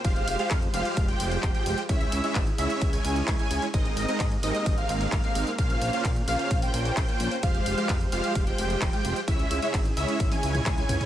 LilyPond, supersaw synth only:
\new Staff \with { instrumentName = "Supersaw synth" } { \time 4/4 \key f \minor \tempo 4 = 130 <aes f' g' c'' f''>8. <aes f' g' c'' f''>16 r8 <aes f' g' c'' f''>8. <aes f' g' c'' g''>4 <aes f' g' c'' g''>8 r16 | <aes des' fes' des'' fes''>8. <aes des' fes' des'' fes''>16 r8 <aes des' fes' des'' fes''>8. <aes des' fes' des'' aes''>4 <aes des' fes' des'' aes''>8 r16 | <aes c' ees' bes' ees''>8. <aes c' ees' bes' ees''>16 r8 <aes c' ees' bes' ees''>8. <aes c' ees' bes' f''>4 <aes c' ees' bes' f''>8 r16 | <bes des' f' c'' f''>8. <bes des' f' c'' f''>16 r8 <bes des' f' c'' f''>8. <bes des' f' c'' g''>4 <bes des' f' c'' g''>8 r16 |
<aes f' g' c'' f''>8. <aes f' g' c'' f''>16 r8 <aes f' g' c'' f''>8. <aes f' g' c'' g''>4 <aes f' g' c'' g''>8 r16 | <aes des' fes' des'' fes''>8. <aes des' fes' des'' fes''>16 r8 <aes des' fes' des'' fes''>8. <aes des' fes' des'' aes''>4 <aes des' fes' des'' aes''>8 r16 | }